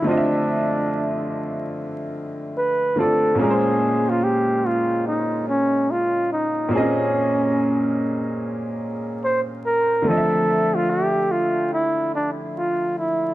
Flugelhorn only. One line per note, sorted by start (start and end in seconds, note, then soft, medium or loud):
0.07 1.73 D4 medium
2.57 3.00 B4 loud
2.99 3.40 A4 loud
3.40 4.11 G#4 medium
4.09 4.25 F4 medium
4.24 4.67 G4 medium
4.66 5.06 F4 medium
5.07 5.45 D#4 medium
5.49 5.92 C#4 medium
5.91 6.32 F4 medium
6.32 6.70 D#4 medium
6.74 8.36 C#4 medium
9.24 9.40 C5 medium
9.66 10.09 A#4 loud
10.07 10.77 A4 loud
10.76 10.92 F4 medium
10.90 11.33 G4 medium
11.31 11.73 F4 medium
11.73 12.11 E4 medium
12.15 12.31 D4 medium
12.57 12.95 F4 medium
12.98 13.34 E4 medium